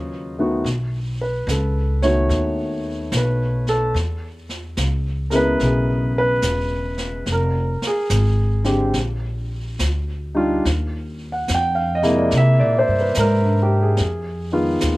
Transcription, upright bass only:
0.00 0.62 D#2 medium
0.64 1.44 B1 medium
1.47 2.27 C#2 medium
2.29 3.09 D#2 medium
3.12 3.92 B1 medium
3.94 4.75 E2 medium
4.77 5.57 C#2 medium
5.61 6.41 B1 medium
6.43 7.24 E1 medium
7.27 7.78 F1 medium
7.82 muted upright bass stroke soft
8.10 8.92 G#1 medium
8.94 9.76 A#1 medium
9.80 10.61 D2 medium
10.65 11.46 D#2 medium
11.49 12.30 F2 medium
12.33 12.61 C3 medium
12.61 12.87 A#2 soft
12.88 13.13 G2 medium
13.17 13.97 G#2 medium
14.00 14.79 F2 medium
14.82 14.97 D#2 medium

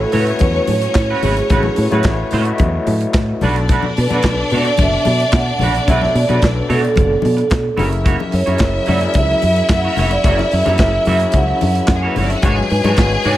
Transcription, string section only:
0.00 3.10 C#4 medium
0.00 3.10 C#5 loud
3.42 7.47 D4 loud
3.42 7.48 D5 loud
7.79 11.85 E4 medium
7.79 11.85 E5 loud
11.95 12.02 G#3 medium
11.95 12.02 G#4 medium
12.02 12.09 A#3 medium
12.02 12.09 A#4 medium
12.09 12.16 B3 medium
12.09 12.16 B4 medium
12.16 12.23 C#4 medium
12.16 12.23 C#5 medium
12.24 12.30 D4 medium
12.24 12.30 D5 medium
12.30 12.36 E4 medium
12.30 12.37 E5 medium
12.36 12.43 F#4 medium
12.36 12.43 F#5 medium
12.42 13.37 G#4 loud
12.42 13.37 G#5 loud

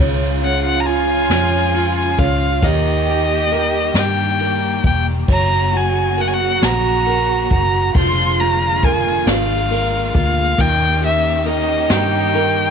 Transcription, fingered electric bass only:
0.00 1.26 C#2 loud
1.30 2.14 F2 medium
2.18 2.60 C#2 medium
2.62 3.91 D#2 loud
3.94 4.80 G2 medium
4.84 5.26 E1 medium
5.28 6.58 F#1 loud
6.62 7.47 A#1 medium
7.51 7.92 F#1 medium
7.94 9.23 F1 loud
9.26 10.10 G#1 loud
10.15 10.56 D2 medium
10.58 11.85 D#2 loud
11.90 12.70 G2 medium

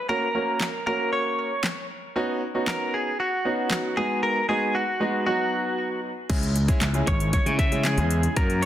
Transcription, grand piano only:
0.09 0.25 A#3 medium
0.09 0.25 C#4 medium
0.09 0.25 F#4 medium
0.09 0.25 A#4 medium
0.35 0.66 A#3 medium
0.35 0.66 C#4 medium
0.35 0.66 F#4 medium
0.35 0.66 A#4 medium
0.86 1.49 A#3 medium
0.86 1.49 C#4 medium
0.86 1.49 F#4 medium
0.86 1.50 A#4 medium
2.16 2.39 B3 medium
2.16 2.39 C#4 medium
2.16 2.39 D#4 medium
2.16 2.39 F#4 loud
2.54 3.09 B3 medium
2.54 3.10 C#4 medium
2.54 3.10 D#4 medium
2.54 3.10 F#4 medium
3.45 3.92 B3 medium
3.45 3.92 C#4 medium
3.45 3.92 D#4 medium
3.45 3.92 F#4 medium
3.97 4.38 G#3 medium
3.97 4.38 B3 medium
3.97 4.38 D#4 medium
3.97 4.38 F#4 medium
4.48 4.80 G#3 medium
4.48 4.80 B3 medium
4.48 4.80 D#4 medium
4.48 4.80 F#4 medium
5.00 5.26 G#3 medium
5.00 5.25 B3 medium
5.00 5.25 D#4 medium
5.00 5.25 F#4 medium
5.26 6.09 F#3 medium
5.26 6.09 B3 medium
5.26 6.09 D#4 medium
5.26 6.09 F#4 medium
6.29 6.53 G#3 medium
6.29 6.53 C#4 medium
6.29 6.53 E4 medium
6.29 6.53 G#4 medium
6.68 6.84 G#3 medium
6.68 6.84 C#4 medium
6.68 6.84 E4 medium
6.68 6.84 G#4 medium
6.94 7.26 G#3 medium
6.94 7.26 C#4 medium
6.94 7.26 E4 medium
6.94 7.26 G#4 medium
7.46 7.62 G#3 medium
7.46 7.62 C#4 medium
7.46 7.62 E4 medium
7.46 7.62 G#4 medium
7.72 7.87 G#3 medium
7.72 7.88 C#4 medium
7.72 7.88 E4 medium
7.72 7.88 G#4 medium
7.98 8.21 G#3 medium
7.98 8.21 C#4 medium
7.98 8.21 E4 medium
7.98 8.21 G#4 medium
8.36 8.60 A#3 medium
8.36 8.60 C#4 medium
8.36 8.60 F#4 medium
8.36 8.60 A#4 medium

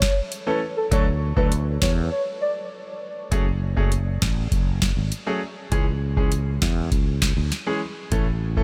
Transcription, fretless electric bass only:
0.92 1.32 D2 loud
1.37 1.77 D2 loud
1.82 2.09 E2 medium
3.32 4.18 F#1 loud
4.22 4.49 A1 medium
4.52 4.92 F#1 medium
4.97 5.10 G#1 medium
5.72 6.58 C#2 loud
6.62 6.89 E2 medium
6.92 7.32 C#2 medium
7.37 7.50 D2 medium
8.12 8.64 A1 loud

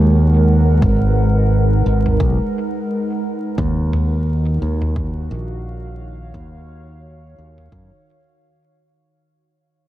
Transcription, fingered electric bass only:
0.00 0.80 D#2 medium
0.82 1.83 G#1 medium
1.86 2.17 G#1 medium
2.20 2.37 B1 medium
3.58 4.59 D#2 medium
4.62 5.28 D#2 medium
5.31 6.31 A#1 medium
6.34 7.35 D#2 medium
7.38 7.69 D#2 medium
7.72 7.89 F#2 medium

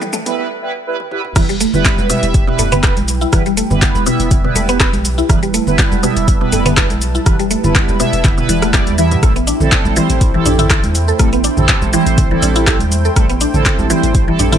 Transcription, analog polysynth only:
0.26 0.36 G3 loud
0.26 0.36 B3 medium
0.26 0.36 E4 medium
0.26 0.36 B4 loud
0.38 0.47 G3 medium
0.38 0.47 B3 medium
0.38 0.47 E4 medium
0.38 0.47 B4 loud
0.62 0.72 G3 medium
0.62 0.72 B3 medium
0.62 0.72 E4 medium
0.62 0.72 B4 loud
0.87 0.96 G3 medium
0.87 0.96 B3 medium
0.87 0.96 E4 medium
0.87 0.96 B4 loud
1.11 1.21 G3 medium
1.11 1.21 B3 medium
1.11 1.21 E4 medium
1.11 1.21 B4 loud
1.36 1.46 G3 medium
1.36 1.46 B3 medium
1.36 1.46 E4 medium
1.36 1.46 B4 loud
1.74 2.07 G3 loud
1.74 2.07 B3 medium
1.74 2.07 E4 medium
1.74 2.07 B4 loud
2.10 2.44 G3 loud
2.10 2.44 B3 medium
2.10 2.44 E4 medium
2.10 2.44 E5 loud
2.47 2.81 G3 medium
2.47 2.81 B3 medium
2.47 2.81 E4 medium
2.47 2.81 B4 loud
2.83 2.93 G3 medium
2.83 2.93 B3 medium
2.83 2.93 E4 medium
2.83 2.93 B4 loud
3.33 3.42 G3 medium
3.33 3.42 B3 medium
3.33 3.42 E4 medium
3.33 3.42 B4 loud
3.70 4.04 G3 loud
3.70 4.04 B3 medium
3.70 4.04 E4 medium
3.70 4.04 B4 loud
4.06 4.41 G3 medium
4.06 4.41 B3 medium
4.06 4.41 E4 medium
4.06 4.41 E5 loud
4.44 4.78 G3 medium
4.44 4.78 B3 medium
4.44 4.78 E4 medium
4.44 4.78 B4 loud
4.80 4.90 G3 medium
4.80 4.90 B3 medium
4.80 4.90 E4 medium
4.80 4.90 B4 loud
5.30 5.39 G3 medium
5.30 5.39 B3 medium
5.30 5.39 E4 medium
5.30 5.39 B4 loud
5.67 6.01 G3 loud
5.67 6.01 B3 medium
5.67 6.01 E4 medium
5.67 6.01 B4 loud
6.03 6.38 G3 loud
6.03 6.38 B3 medium
6.03 6.38 E4 medium
6.03 6.38 E5 loud
6.41 6.74 G3 medium
6.41 6.74 B3 medium
6.41 6.74 E4 medium
6.41 6.74 B4 loud
6.77 6.87 G3 medium
6.77 6.87 B3 medium
6.77 6.87 E4 medium
6.77 6.87 B4 loud
7.26 7.36 G3 medium
7.26 7.36 B3 medium
7.26 7.36 E4 medium
7.26 7.36 B4 loud
7.64 7.97 G3 loud
7.64 7.97 B3 medium
7.64 7.97 E4 medium
7.64 7.97 B4 loud
8.00 8.35 G3 medium
8.00 8.35 B3 medium
8.00 8.35 E4 medium
8.00 8.35 E5 loud
8.38 8.71 G3 medium
8.38 8.71 B3 medium
8.38 8.71 E4 medium
8.38 8.71 B4 loud
8.73 8.95 G3 medium
8.73 8.95 B3 medium
8.73 8.95 E4 medium
8.73 8.95 D5 loud
8.98 9.20 G3 loud
8.98 9.20 B3 medium
8.98 9.20 E4 medium
8.98 9.20 E5 loud
9.23 9.33 G3 medium
9.23 9.33 C4 medium
9.23 9.33 E4 medium
9.23 9.33 A4 loud
9.61 9.94 G3 loud
9.61 9.94 C4 medium
9.61 9.94 E4 medium
9.61 9.94 A4 loud
9.97 10.31 G3 loud
9.97 10.31 C4 medium
9.97 10.31 E4 medium
9.97 10.31 C5 loud
10.34 10.68 G3 medium
10.34 10.68 C4 medium
10.34 10.68 E4 medium
10.34 10.68 A4 loud
10.70 10.80 G3 medium
10.70 10.80 C4 medium
10.70 10.80 E4 medium
10.70 10.80 A4 loud
11.20 11.29 G3 medium
11.20 11.29 C4 medium
11.20 11.29 E4 medium
11.20 11.29 A4 loud
11.57 11.91 G3 loud
11.57 11.91 C4 medium
11.57 11.91 E4 medium
11.57 11.91 A4 loud
11.93 12.28 G3 medium
11.93 12.28 C4 medium
11.93 12.28 E4 medium
11.93 12.28 C5 loud
12.31 12.65 G3 medium
12.31 12.64 C4 medium
12.31 12.64 E4 medium
12.31 12.65 A4 loud
12.67 12.77 G3 medium
12.67 12.77 C4 medium
12.67 12.77 E4 medium
12.67 12.77 A4 loud
13.17 13.26 G3 medium
13.17 13.26 C4 medium
13.17 13.26 E4 medium
13.17 13.26 A4 loud
13.54 13.87 G3 loud
13.54 13.87 C4 medium
13.54 13.87 E4 medium
13.54 13.87 A4 loud
13.90 14.25 G3 loud
13.90 14.25 C4 medium
13.90 14.25 E4 medium
13.90 14.25 C5 loud
14.28 14.58 G3 medium
14.28 14.58 C4 medium
14.28 14.58 E4 medium
14.28 14.58 A4 loud

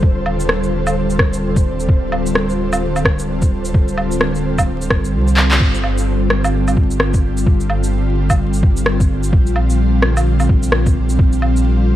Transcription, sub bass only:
0.03 1.87 D#1 loud
1.89 3.73 D1 loud
3.74 4.92 D1 loud
4.91 5.16 G1 loud
5.14 5.59 C2 medium
5.61 7.45 G1 loud
7.47 9.31 G1 loud
9.33 11.18 A#1 loud
11.19 11.96 A#1 loud

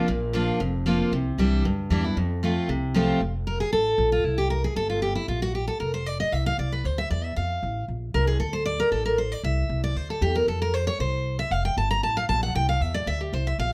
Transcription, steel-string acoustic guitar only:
0.08 0.58 A#2 medium
0.33 0.59 F3 loud
0.33 0.59 A#3 medium
0.33 0.59 D4 loud
0.33 0.59 F4 medium
0.60 1.10 F2 loud
0.86 1.11 F3 loud
0.86 1.11 A#3 loud
0.86 1.12 D4 medium
0.86 1.12 F4 medium
1.13 1.62 C3 medium
1.38 1.63 E3 medium
1.38 1.63 G3 loud
1.38 1.64 D4 medium
1.38 1.64 E4 loud
1.65 2.14 G2 medium
1.90 2.03 E3 medium
1.90 2.04 G3 medium
1.90 2.04 D4 medium
1.90 2.03 E4 medium
2.04 2.17 D4 soft
2.04 2.16 E4 medium
2.17 2.66 F2 medium
2.43 2.67 F3 medium
2.43 2.68 A3 medium
2.43 2.68 C4 medium
2.43 2.68 F4 medium
2.69 3.18 C3 medium
2.94 3.19 F3 medium
2.94 3.20 A3 medium
2.94 3.20 C4 medium
2.94 3.20 F4 loud
3.47 3.60 A#4 medium
3.60 3.72 G#4 loud
3.73 4.09 A4 loud
4.12 4.25 F4 medium
4.25 4.38 E4 medium
4.38 4.50 G4 medium
4.50 4.63 A#4 medium
4.64 4.76 G#4 medium
4.76 4.89 A4 loud
4.90 5.02 F4 medium
5.02 5.15 G4 medium
5.15 5.28 E4 medium
5.28 5.41 F4 medium
5.42 5.54 F#4 loud
5.55 5.67 G4 medium
5.68 5.79 A4 medium
5.80 5.93 A#4 medium
5.94 6.06 C5 medium
6.06 6.19 D5 loud
6.20 6.32 D#5 loud
6.32 6.45 E5 medium
6.46 6.58 F5 loud
6.59 6.72 D5 medium
6.72 6.85 B4 medium
6.85 6.98 C5 medium
6.98 7.10 E5 loud
7.11 7.24 D5 medium
7.24 7.36 E5 loud
7.36 7.85 F5 medium
8.14 8.27 A#4 medium
8.27 8.39 G#4 medium
8.40 8.53 A4 medium
8.53 8.65 C5 loud
8.66 8.79 D5 loud
8.80 8.91 A#4 loud
8.92 9.05 A4 medium
9.05 9.18 A#4 medium
9.18 9.32 C5 medium
9.32 9.44 D5 loud
9.44 9.81 E5 loud
9.84 9.96 D5 loud
9.96 10.09 C5 medium
10.10 10.22 A4 medium
10.22 10.35 G4 medium
10.36 10.47 A#4 medium
10.48 10.61 A4 medium
10.62 10.74 A#4 loud
10.74 10.87 C5 medium
10.87 10.99 C#5 loud
11.00 11.36 C5 medium
11.39 11.51 E5 loud
11.51 11.64 F5 medium
11.65 11.77 G5 medium
11.78 11.90 A5 medium
11.91 12.03 A#5 loud
12.03 12.16 A5 medium
12.17 12.24 F5 loud
12.29 12.42 A5 loud
12.43 12.55 F#5 medium
12.55 12.68 G5 loud
12.69 12.81 F5 loud
12.81 12.94 E5 medium
12.94 13.07 D5 medium
13.07 13.20 E5 loud
13.21 13.33 G4 medium
13.34 13.46 C5 loud
13.47 13.59 E5 medium
13.59 13.72 F5 loud

